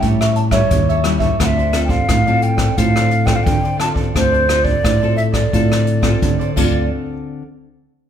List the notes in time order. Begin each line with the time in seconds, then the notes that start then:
Already playing: G3 C#4 E4
0.02 A2 G4 A4 C#5 E5, kick, closed hi-hat
0.21 A4 C#5 E5, cross-stick, closed hi-hat
0.36 A5, muted cavaquinho stroke, closed hi-hat
0.51 G3 C#4 E4 A4 C#5 E5, kick, cross-stick, closed hi-hat
0.71 D#2, kick, closed hi-hat
0.89 A4 C#5 E5, closed hi-hat
1.04 G3 C#4 E4 G4 A4 C#5 E5, cross-stick, closed hi-hat
1.19 A4 C#5 E5, kick, closed hi-hat
1.39 D2 D3 C4 F4 A4 C5 D5 F#5, kick, cross-stick, closed hi-hat
1.46 E5
1.57 A4 C5 D5, closed hi-hat
1.73 C4 F4 A4, cross-stick, closed hi-hat
1.84 D5 G5
1.89 A4 C5 F5, kick, closed hi-hat
2.08 A2 F4 A4 C5 D5, kick, cross-stick, closed hi-hat
2.26 C4 F4 A4 C5 D5, closed hi-hat
2.42 G5, muted cavaquinho stroke, closed hi-hat
2.57 A4 C5 D5, kick, cross-stick, closed hi-hat
2.77 A2 D3 C4 F4 A4 C5 D5 F5, kick, closed hi-hat
2.95 A4 C5 D5, cross-stick, closed hi-hat
3.10 muted cavaquinho stroke, closed hi-hat
3.26 C4 F4 A4 C5 D5 G5, kick, cross-stick, closed hi-hat
3.36 F5
3.44 A2 D3 G5, kick, closed hi-hat
3.64 A4 C5 D5, closed hi-hat
3.78 C4 F4 A4 C5 D5 A5, cross-stick, closed hi-hat
3.94 A4 C5 D5, kick
4.14 D2 D3 C4 F4 A4 C5 D5, kick, cross-stick, closed hi-hat
4.31 A4 C5 D5, closed hi-hat
4.49 C4 F4 A4, cross-stick, closed hi-hat
4.63 A4 C5 D5, kick
4.83 A2 F4 A4 C5 D5, kick, cross-stick, closed hi-hat
5.00 C4 F4 A4 C5 D5
5.16 E5, muted cavaquinho stroke, closed hi-hat
5.32 A4 C5 D5, kick, cross-stick, closed hi-hat
5.53 A2 D3 C4 F4 A4 C5 D5, kick, closed hi-hat
5.70 A4 C5 D5, cross-stick, closed hi-hat
5.86 muted cavaquinho stroke, closed hi-hat
6.01 C4 F4 A4 C5 D5, kick, cross-stick, closed hi-hat
6.22 A2 D3, kick, closed hi-hat
6.39 A4 C5 D5, closed hi-hat
6.56 D2 D3 C4 F4 A4 C5 D5, kick, crash